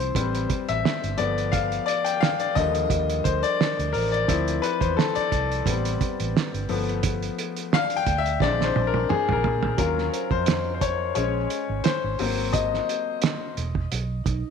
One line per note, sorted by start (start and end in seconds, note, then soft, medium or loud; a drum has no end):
0.00 0.11 C2 medium
0.00 0.11 F3 soft
0.00 0.12 C4 soft
0.00 0.46 C4 medium
0.00 0.12 E4 medium
0.00 0.71 C5 medium
0.00 closed hi-hat soft
0.15 0.45 A1 medium
0.15 1.15 G3 soft
0.15 1.15 C4 medium
0.15 1.15 B4 soft
0.15 kick medium
0.15 closed hi-hat medium
0.35 closed hi-hat medium
0.50 kick medium
0.50 closed hi-hat medium
0.69 0.83 A1 medium
0.69 1.21 E5 medium
0.69 closed hi-hat soft
0.85 muted fingered electric bass stroke soft
0.85 snare loud
1.04 1.17 G1 medium
1.04 closed hi-hat medium
1.17 1.78 G1 medium
1.17 1.65 F3 soft
1.17 1.66 A3 soft
1.17 1.66 B3 medium
1.17 2.88 B4 medium
1.17 1.50 D5 medium
1.17 closed hi-hat medium
1.38 closed hi-hat soft
1.52 1.88 F5 medium
1.52 kick medium
1.52 closed hi-hat medium
1.72 closed hi-hat soft
1.86 2.06 D5 medium
1.86 closed hi-hat medium
2.05 2.22 G5 medium
2.05 closed hi-hat medium
2.20 2.41 F5 medium
2.20 snare loud
2.40 2.45 D5 medium
2.40 closed hi-hat medium
2.55 2.86 D#2 medium
2.55 3.04 D3 medium
2.55 3.03 F3 medium
2.55 3.03 G3 soft
2.55 4.59 A#4 medium
2.55 3.27 D#5 loud
2.55 kick medium
2.55 closed hi-hat medium
2.75 closed hi-hat soft
2.90 3.20 D#2 medium
2.90 kick medium
2.90 closed hi-hat medium
3.10 closed hi-hat medium
3.24 3.42 D2 medium
3.24 3.44 C5 medium
3.24 kick medium
3.24 closed hi-hat medium
3.43 3.95 D5 loud
3.43 closed hi-hat soft
3.61 snare loud
3.79 3.92 D2 medium
3.79 closed hi-hat soft
3.93 4.24 A1 medium
3.93 3.98 A#4 medium
3.93 4.59 C5 medium
3.93 open hi-hat medium
4.12 4.64 D5 medium
4.12 closed hi-hat medium
4.28 4.58 D2 loud
4.28 5.28 F3 medium
4.28 5.28 C4 soft
4.28 5.28 E4 medium
4.28 kick loud
4.28 closed hi-hat medium
4.48 closed hi-hat medium
4.62 4.80 B4 medium
4.62 closed hi-hat medium
4.81 4.95 E2 medium
4.81 4.96 C5 medium
4.81 kick medium
4.81 closed hi-hat medium
4.97 5.14 A4 medium
4.97 snare loud
5.15 6.83 D5 medium
5.15 muted fingered electric bass stroke soft
5.15 closed hi-hat medium
5.32 5.61 C2 medium
5.32 kick medium
5.32 closed hi-hat medium
5.52 closed hi-hat soft
5.66 5.96 A1 loud
5.66 6.65 G3 medium
5.66 6.66 B3 soft
5.66 6.66 C4 medium
5.66 7.00 B4 medium
5.66 kick medium
5.66 closed hi-hat medium
5.85 closed hi-hat medium
6.01 kick medium
6.01 closed hi-hat medium
6.20 6.33 A1 medium
6.20 closed hi-hat soft
6.36 muted fingered electric bass stroke soft
6.36 snare loud
6.54 6.67 G1 medium
6.54 closed hi-hat soft
6.69 7.28 G1 medium
6.69 7.16 F3 medium
6.69 7.16 A3 medium
6.69 7.17 B3 medium
6.69 open hi-hat medium
6.89 closed hi-hat soft
7.03 kick loud
7.03 closed hi-hat medium
7.22 closed hi-hat soft
7.38 closed hi-hat medium
7.56 closed hi-hat medium
7.72 8.37 D5 medium
7.72 7.95 F5 loud
7.72 snare loud
7.90 closed hi-hat medium
7.96 8.19 G5 loud
8.06 8.36 D2 loud
8.06 kick medium
8.06 closed hi-hat medium
8.18 8.42 E5 medium
8.26 closed hi-hat soft
8.40 8.70 A#1 loud
8.40 9.40 G#3 medium
8.40 9.40 C4 soft
8.40 9.41 D4 medium
8.40 8.65 D5 medium
8.40 kick loud
8.40 snare medium
8.61 8.88 C5 medium
8.61 snare medium
8.76 9.05 A#1 medium
8.76 high tom medium
8.87 9.11 A#4 medium
8.94 high tom medium
9.09 9.33 G#4 medium
9.09 muted fingered electric bass stroke soft
9.09 mid tom medium
9.29 9.42 A#1 medium
9.29 9.75 A#4 medium
9.29 mid tom medium
9.44 9.74 A#2 medium
9.44 floor tom loud
9.63 floor tom medium
9.78 10.08 D#2 medium
9.78 10.25 F#3 medium
9.78 10.25 C#4 soft
9.78 10.25 F4 medium
9.78 10.33 A#4 medium
9.78 kick medium
9.78 closed hi-hat medium
9.98 snare soft
10.11 11.46 C5 medium
10.11 closed hi-hat medium
10.31 11.12 F2 medium
10.31 10.73 C5 medium
10.31 kick medium
10.46 snare loud
10.46 closed hi-hat medium
10.74 10.81 C5 medium
10.81 11.14 C#5 medium
10.81 kick medium
10.81 closed hi-hat medium
11.15 11.46 A#1 medium
11.15 11.62 G#3 soft
11.15 11.63 C#4 medium
11.15 11.63 C5 soft
11.15 11.86 C#5 medium
11.15 closed hi-hat medium
11.50 closed hi-hat medium
11.70 11.83 G#1 medium
11.84 12.55 C5 medium
11.84 snare loud
11.84 closed hi-hat medium
12.04 12.17 G#1 medium
12.19 12.78 G#1 loud
12.19 12.66 F#3 medium
12.19 12.66 A#3 medium
12.19 12.67 C4 medium
12.19 open hi-hat medium
12.53 13.87 D#5 medium
12.53 kick medium
12.53 closed hi-hat medium
12.74 snare soft
12.89 closed hi-hat medium
13.22 snare loud
13.22 closed hi-hat medium
13.57 13.86 E1 medium
13.57 closed hi-hat medium
13.75 kick medium
13.92 14.21 B1 medium
13.92 closed hi-hat medium
14.24 14.42 B1 medium
14.24 14.50 D#4 medium
14.24 kick loud
14.24 closed hi-hat medium